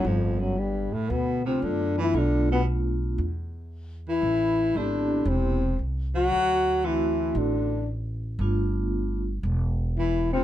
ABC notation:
X:1
M:4/4
L:1/8
Q:"Swing" 1/4=115
K:Ddor
V:1 name="Trombone"
F, ^F, G, A, B, C D E | D B, z4 z E- | E2 D2 C2 z ^F- | ^F2 E2 D2 z2 |
z6 E C |]
V:2 name="Vibraphone"
z4 z [A,B,DF]3 | [A,B,DF]4 z4 | z2 [B,CEG]3 z3 | z2 [A,CE^F]3 z3 |
[A,B,DF]3 z4 [A,B,DF] |]
V:3 name="Baritone saxophone" clef=bass
F,, ^F,, G,, A,, B,, C, D, E, | D, B,, z4 z E,- | E,2 D,2 C,2 z ^F,- | ^F,2 E,2 D,2 z2 |
z6 E, C, |]
V:4 name="Upright bass" clef=bass
G,,,3 z D,,2 ^F,,2 | B,,,4 E,,4 | A,,,2 _A,,,2 E,,,2 C,,2 | D,,4 A,,,4 |
G,,,4 E,,,4 |]